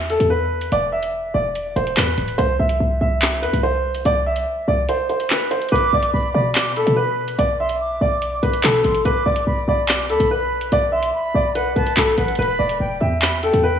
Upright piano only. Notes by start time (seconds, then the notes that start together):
0.10 A4
0.30 B4
0.72 D5
0.92 E5
1.34 D5
1.76 C5
1.98 B4
2.38 C5
2.59 E5
3.01 E5
3.42 B4
3.63 C5
4.06 D5
4.26 E5
4.68 D5
4.89 C5
5.10 C5
5.31 B4
5.51 C5
5.72 B4
5.94 D5
6.34 D5
6.77 A4
6.96 B4
7.39 D5
7.60 E5
8.01 D5
8.43 B4
8.63 A4
9.05 B4
9.26 D5
9.69 D5
10.10 A4
10.31 B4
10.73 D5
10.92 E5
11.35 D5
11.55 B4
11.76 B4
11.97 A4
12.18 B4
12.39 B4
12.59 D5
13.00 E5
13.43 A4
13.63 B4